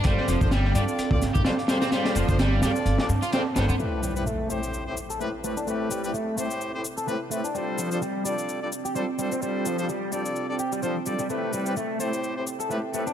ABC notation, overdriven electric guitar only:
X:1
M:4/4
L:1/16
Q:"Swing 16ths" 1/4=128
K:Am
V:1 name="Overdriven electric guitar"
G,2 F,2 G,2 G, z4 G G, z G, C | G,2 F,2 G,2 G, z4 F C z B, B, | A,2 G,2 A,2 A, z4 A A, z A, D | A,2 G,2 A,2 A, z4 A A, z A, D |
G,2 F,2 G,2 G, z4 G G, z G, C | G,2 F,2 G,2 G, z3 G G, F, z G, G, | A,2 G,2 A,2 A, z4 A A, z A, D |]